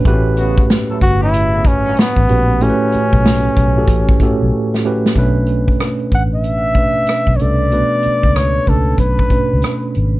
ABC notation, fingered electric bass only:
X:1
M:4/4
L:1/16
Q:"Swing 16ths" 1/4=94
K:Bm
V:1 name="Fingered electric bass" clef=bass
A,,,4 z2 G,,,6 z A,,, ^A,,,2- | ^A,,, z2 B,,,3 B,,,2 =A,,,2 z B,,, z4 | B,,,4 z2 A,,,6 z B,,, =C,,2- | =C,, z2 ^C,,3 C,,2 B,,,2 z C,, z2 ^G,,,2 |]